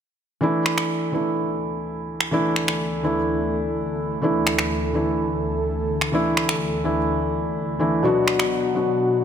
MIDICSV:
0, 0, Header, 1, 4, 480
1, 0, Start_track
1, 0, Key_signature, 2, "major"
1, 0, Tempo, 476190
1, 422, Time_signature, 4, 2, 24, 8
1, 9318, End_track
2, 0, Start_track
2, 0, Title_t, "Analog synth pad"
2, 0, Program_c, 0, 89
2, 422, Note_on_c, 0, 38, 79
2, 422, Note_on_c, 0, 57, 72
2, 422, Note_on_c, 0, 69, 87
2, 423, Note_on_c, 0, 50, 72
2, 423, Note_on_c, 0, 64, 73
2, 8062, Note_off_c, 0, 38, 0
2, 8062, Note_off_c, 0, 50, 0
2, 8062, Note_off_c, 0, 57, 0
2, 8062, Note_off_c, 0, 64, 0
2, 8062, Note_off_c, 0, 69, 0
2, 8102, Note_on_c, 0, 59, 72
2, 8103, Note_on_c, 0, 47, 82
2, 8103, Note_on_c, 0, 66, 76
2, 8104, Note_on_c, 0, 62, 76
2, 8104, Note_on_c, 0, 78, 88
2, 9318, Note_off_c, 0, 47, 0
2, 9318, Note_off_c, 0, 59, 0
2, 9318, Note_off_c, 0, 62, 0
2, 9318, Note_off_c, 0, 66, 0
2, 9318, Note_off_c, 0, 78, 0
2, 9318, End_track
3, 0, Start_track
3, 0, Title_t, "Felt piano"
3, 0, Program_c, 1, 0
3, 411, Note_on_c, 1, 52, 86
3, 419, Note_on_c, 1, 57, 78
3, 427, Note_on_c, 1, 62, 77
3, 436, Note_on_c, 1, 64, 93
3, 607, Control_c, 1, 64, 127
3, 1108, Note_off_c, 1, 52, 0
3, 1112, Note_off_c, 1, 57, 0
3, 1116, Note_off_c, 1, 62, 0
3, 1120, Note_off_c, 1, 64, 0
3, 1130, Note_on_c, 1, 52, 69
3, 1138, Note_on_c, 1, 57, 60
3, 1146, Note_on_c, 1, 62, 61
3, 1154, Note_on_c, 1, 64, 72
3, 2308, Note_off_c, 1, 52, 0
3, 2311, Note_off_c, 1, 57, 0
3, 2316, Note_off_c, 1, 62, 0
3, 2320, Note_off_c, 1, 64, 0
3, 2332, Note_on_c, 1, 52, 88
3, 2340, Note_on_c, 1, 57, 78
3, 2348, Note_on_c, 1, 62, 80
3, 2356, Note_on_c, 1, 64, 97
3, 3029, Note_off_c, 1, 52, 0
3, 3033, Note_off_c, 1, 57, 0
3, 3037, Note_off_c, 1, 62, 0
3, 3040, Note_off_c, 1, 64, 0
3, 3058, Note_on_c, 1, 52, 77
3, 3062, Note_on_c, 1, 57, 71
3, 3066, Note_on_c, 1, 62, 71
3, 3070, Note_on_c, 1, 64, 84
3, 3181, Note_off_c, 1, 52, 0
3, 3183, Note_off_c, 1, 57, 0
3, 3185, Note_off_c, 1, 62, 0
3, 3187, Note_off_c, 1, 64, 0
3, 4250, Note_on_c, 1, 52, 83
3, 4258, Note_on_c, 1, 57, 79
3, 4267, Note_on_c, 1, 62, 80
3, 4275, Note_on_c, 1, 64, 93
3, 4948, Note_off_c, 1, 52, 0
3, 4952, Note_off_c, 1, 57, 0
3, 4956, Note_off_c, 1, 62, 0
3, 4960, Note_off_c, 1, 64, 0
3, 4971, Note_on_c, 1, 52, 70
3, 4979, Note_on_c, 1, 57, 62
3, 4987, Note_on_c, 1, 62, 60
3, 4995, Note_on_c, 1, 64, 73
3, 6148, Note_off_c, 1, 52, 0
3, 6152, Note_off_c, 1, 57, 0
3, 6156, Note_off_c, 1, 62, 0
3, 6160, Note_off_c, 1, 64, 0
3, 6171, Note_on_c, 1, 52, 87
3, 6179, Note_on_c, 1, 57, 84
3, 6187, Note_on_c, 1, 62, 80
3, 6195, Note_on_c, 1, 64, 100
3, 6868, Note_off_c, 1, 52, 0
3, 6872, Note_off_c, 1, 57, 0
3, 6876, Note_off_c, 1, 62, 0
3, 6880, Note_off_c, 1, 64, 0
3, 6896, Note_on_c, 1, 52, 79
3, 6900, Note_on_c, 1, 57, 70
3, 6904, Note_on_c, 1, 62, 69
3, 6908, Note_on_c, 1, 64, 85
3, 7020, Note_off_c, 1, 52, 0
3, 7022, Note_off_c, 1, 57, 0
3, 7024, Note_off_c, 1, 62, 0
3, 7026, Note_off_c, 1, 64, 0
3, 7857, Note_on_c, 1, 52, 81
3, 7861, Note_on_c, 1, 57, 72
3, 7865, Note_on_c, 1, 62, 72
3, 7869, Note_on_c, 1, 64, 87
3, 8071, Note_off_c, 1, 52, 0
3, 8073, Note_off_c, 1, 57, 0
3, 8075, Note_off_c, 1, 62, 0
3, 8077, Note_off_c, 1, 64, 0
3, 8090, Note_on_c, 1, 47, 89
3, 8097, Note_on_c, 1, 54, 79
3, 8103, Note_on_c, 1, 59, 82
3, 8109, Note_on_c, 1, 62, 80
3, 8114, Control_c, 1, 64, 0
3, 8115, Note_on_c, 1, 66, 95
3, 8284, Control_c, 1, 64, 127
3, 8788, Note_off_c, 1, 47, 0
3, 8791, Note_off_c, 1, 54, 0
3, 8794, Note_off_c, 1, 59, 0
3, 8797, Note_off_c, 1, 62, 0
3, 8800, Note_off_c, 1, 66, 0
3, 8811, Note_on_c, 1, 47, 68
3, 8816, Note_on_c, 1, 54, 61
3, 8823, Note_on_c, 1, 59, 64
3, 8829, Note_on_c, 1, 62, 62
3, 8835, Note_on_c, 1, 66, 76
3, 9318, Note_off_c, 1, 47, 0
3, 9318, Note_off_c, 1, 54, 0
3, 9318, Note_off_c, 1, 59, 0
3, 9318, Note_off_c, 1, 62, 0
3, 9318, Note_off_c, 1, 66, 0
3, 9318, End_track
4, 0, Start_track
4, 0, Title_t, "Drums"
4, 663, Note_on_c, 9, 26, 59
4, 763, Note_off_c, 9, 26, 0
4, 783, Note_on_c, 9, 26, 68
4, 883, Note_off_c, 9, 26, 0
4, 2223, Note_on_c, 9, 26, 54
4, 2323, Note_off_c, 9, 26, 0
4, 2583, Note_on_c, 9, 26, 59
4, 2684, Note_off_c, 9, 26, 0
4, 2703, Note_on_c, 9, 26, 66
4, 2804, Note_off_c, 9, 26, 0
4, 4502, Note_on_c, 9, 26, 59
4, 4603, Note_off_c, 9, 26, 0
4, 4622, Note_on_c, 9, 26, 75
4, 4723, Note_off_c, 9, 26, 0
4, 6062, Note_on_c, 9, 26, 54
4, 6162, Note_off_c, 9, 26, 0
4, 6422, Note_on_c, 9, 26, 62
4, 6523, Note_off_c, 9, 26, 0
4, 6542, Note_on_c, 9, 26, 75
4, 6643, Note_off_c, 9, 26, 0
4, 8342, Note_on_c, 9, 26, 63
4, 8443, Note_off_c, 9, 26, 0
4, 8462, Note_on_c, 9, 26, 74
4, 8562, Note_off_c, 9, 26, 0
4, 9318, End_track
0, 0, End_of_file